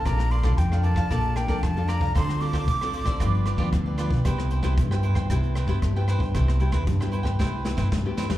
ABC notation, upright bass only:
X:1
M:4/4
L:1/16
Q:1/4=114
K:C
V:1 name="Upright bass" clef=bass
_B,,,4 F,,3 F,, B,,,3 F,, F,,3 C,, | D,,4 A,,,3 A,,, G,,,3 D,, D,,3 B,,, | C,,4 G,,3 G,, C,,3 G,, G,,3 G,, | C,,4 G,,3 G,, C,,3 G,, G,,3 E,, |]